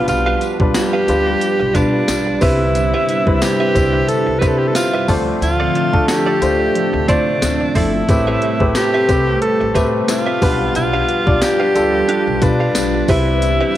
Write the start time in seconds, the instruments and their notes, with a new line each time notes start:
Already playing: grand piano B2 G3 D4 F4 B4, string machine G3 F4 B4
0.08 upright bass B1, alto saxophone F4, muted clean electric guitar stroke, closed hi-hat, tambourine
0.26 clean electric guitar D4 G4 B4 F5
0.41 clean electric guitar D4 G4 B4 F5, closed hi-hat, tambourine
0.59 upright bass B1, grand piano G3 D4 F4 B4, muted clean electric guitar stroke, kick
0.74 alto saxophone G4, muted clean electric guitar stroke, snare, closed hi-hat, tambourine
0.93 clean electric guitar D4 G4 B4 F5
1.08 upright bass D2, grand piano G3 D4 F4 B4, closed hi-hat, tambourine
1.26 muted clean electric guitar stroke
1.41 closed hi-hat, tambourine
1.60 upright bass B1, muted clean electric guitar stroke
1.75 upright bass B2, grand piano G3 D4 F4 B4, clean electric guitar D4 G4 B4 F5, alto saxophone D4, kick, closed hi-hat, tambourine
1.93 muted clean electric guitar stroke
2.08 upright bass B1, snare, closed hi-hat, tambourine
2.27 muted clean electric guitar stroke
2.41 upright bass C2, grand piano C3 G3 C4 E4 B4, string machine C3 D4 E5, clean electric guitar C4 G4 B4 E5, alto saxophone E4, kick, open hi-hat, tambourine
2.61 muted clean electric guitar stroke
2.75 muted clean electric guitar stroke, closed hi-hat, tambourine
2.94 clean electric guitar C4 G4 B4 E5
3.09 clean electric guitar C4 G4 B4 E5, closed hi-hat, tambourine
3.26 upright bass C2, grand piano G3 C4 E4 B4, muted clean electric guitar stroke, kick
3.42 alto saxophone G4, muted clean electric guitar stroke, snare, closed hi-hat, tambourine
3.60 clean electric guitar C4 G4 B4 E5
3.75 upright bass C2, grand piano G3 C4 E4 B4, kick, closed hi-hat, tambourine
3.93 muted clean electric guitar stroke
4.09 alto saxophone A4, closed hi-hat, tambourine
4.27 upright bass C2, muted clean electric guitar stroke
4.39 upright bass C3, grand piano G3 C4 E4 B4, clean electric guitar C4 G4 B4 E5, alto saxophone B4, kick, closed hi-hat, tambourine
4.47 alto saxophone A4
4.58 alto saxophone G4, muted clean electric guitar stroke
4.67 alto saxophone A4
4.75 alto saxophone F4, muted clean electric guitar stroke, snare, closed hi-hat, tambourine
4.94 clean electric guitar C4 G4 B4 E5
5.08 upright bass D2, grand piano D3 A3 D4 F4 C5, string machine D3 F3 A3 C4, clean electric guitar C4 F4 A4 D5, kick, open hi-hat, tambourine
5.27 muted clean electric guitar stroke
5.41 upright bass D2, alto saxophone F4, muted clean electric guitar stroke, closed hi-hat, tambourine
5.60 clean electric guitar C4 F4 A4 D5
5.75 clean electric guitar C4 F4 A4 D5, closed hi-hat
5.93 upright bass D2, grand piano A3 D4 F4 A4, kick
6.08 alto saxophone G4, muted clean electric guitar stroke, snare, closed hi-hat, tambourine
6.26 clean electric guitar C4 F4 A4 D5
6.41 upright bass D2, grand piano A3 D4 F4 C5, muted clean electric guitar stroke, closed hi-hat, tambourine
6.60 muted clean electric guitar stroke
6.75 analog polysynth F3 D4 A4, closed hi-hat
6.93 upright bass D2, muted clean electric guitar stroke
7.08 upright bass D3, grand piano A3 D4 F4 C5, clean electric guitar C4 F4 A4 D5, alto saxophone D4, kick, closed hi-hat, tambourine
7.27 muted clean electric guitar stroke
7.42 upright bass D2, snare, closed hi-hat, tambourine
7.61 muted clean electric guitar stroke
7.75 upright bass G1, analog polysynth F3 D4 A4, clean electric guitar C4 F4 A4 D5, alto saxophone E4, kick, open hi-hat, tambourine
7.94 muted clean electric guitar stroke
8.08 upright bass A1, grand piano A2 A3 C4 G4 B4, string machine G4, muted clean electric guitar stroke, kick, closed hi-hat, tambourine
8.27 clean electric guitar C4 G4 B4 E5
8.42 clean electric guitar C4 G4 B4 E5, closed hi-hat
8.60 upright bass A1, grand piano A3 C4 G4 B4, kick
8.75 alto saxophone G4, muted clean electric guitar stroke, snare, closed hi-hat, tambourine
8.94 clean electric guitar C4 G4 B4 E5
9.08 upright bass C2, grand piano A3 C4 G4 B4, kick, closed hi-hat, tambourine
9.27 muted clean electric guitar stroke
9.42 alto saxophone A4, closed hi-hat
9.61 upright bass A1, muted clean electric guitar stroke
9.75 upright bass A2, grand piano A3 C4 G4 B4, clean electric guitar C4 G4 B4 E5, kick, closed hi-hat, tambourine
9.93 muted clean electric guitar stroke
10.08 alto saxophone F4, muted clean electric guitar stroke, snare, closed hi-hat, tambourine
10.26 clean electric guitar C4 G4 B4 E5
10.41 upright bass B1, grand piano B2 G3 D4 F4 B4, string machine G3 F4 B4, clean electric guitar D4 G4 B4 F5, kick, open hi-hat, tambourine
10.60 muted clean electric guitar stroke
10.75 upright bass B1, alto saxophone F4, muted clean electric guitar stroke, closed hi-hat, tambourine
10.94 clean electric guitar D4 G4 B4 F5
11.08 clean electric guitar D4 G4 B4 F5, closed hi-hat
11.26 upright bass B1, grand piano G3 D4 F4 D5, muted clean electric guitar stroke, kick
11.42 alto saxophone G4, muted clean electric guitar stroke, snare, closed hi-hat, tambourine
11.60 clean electric guitar D4 G4 B4 F5
11.74 upright bass D2, grand piano G3 D4 F4 A4, closed hi-hat, tambourine
11.94 muted clean electric guitar stroke
12.09 clean electric guitar D4 G4 B4 F5, closed hi-hat
12.27 upright bass B1, muted clean electric guitar stroke
12.42 upright bass B2, grand piano G3 D4 F4 B4, alto saxophone D4, muted clean electric guitar stroke, kick, closed hi-hat, tambourine
12.60 clean electric guitar D4 G4 B4 F5
12.75 upright bass B1, snare, closed hi-hat, tambourine
12.94 muted clean electric guitar stroke
13.08 upright bass C2, string machine C3 D4 E4, grand piano C3 G3 C4 E4 B4, clean electric guitar C4 G4 B4 E5, alto saxophone E4, kick, open hi-hat, tambourine
13.27 muted clean electric guitar stroke
13.42 muted clean electric guitar stroke, closed hi-hat, tambourine
13.61 clean electric guitar C4 G4 B4 E5